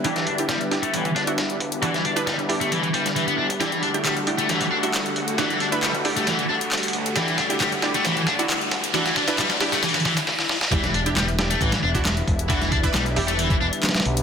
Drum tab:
HH |x-x-x-x-x-x-x-x-x-x-x-x-x-x-x-x-|x-x-x-x-x-x-o-x-x-x-x-x-x-x---x-|x-x-x-x-x-x-x-x-x-x---x-x-x-x-x-|x-x-x-x-x-x-o-x-x-x---x-xxxxx-x-|
CP |--------------------------------|--------------------------------|--------x---------------x-------|--------x---------------x-------|
SD |--o-----o---o-------o---o-------|--o-----o-------------o---------|o-------o-------o-------o-------|o-------o-------o-------o-------|
BD |o-------------o---o---------o---|o---o-o-----------o-o---------o-|--------------------------------|--------------------------------|

HH |x-x-x-x-x-x-x-x-x-x-x-x-x-x-x-x-|x-x-x-x-x-x-o-x-xxxxx-x---------|x-x-x-x-x-x-x-x-x-x---x-x-x-x-x-|x-x-x-x-x-x-o-x-x-x---x-xxxxx-x-|
CP |--------x---------------x-------|--------x-----------------------|--------x---------------x-------|--------x---------------x-------|
SD |o---o---o---o---o---o---o---o---|o-o-o-o-o-o-o-o-o-o-o-o-o-o-o-o-|--o-----o---o-----o-----o-------|--o-----o---------------oooo----|
BD |--------------------------------|--------------------------------|o---------------o-----o-----o---|o---o-o-----------o-------------|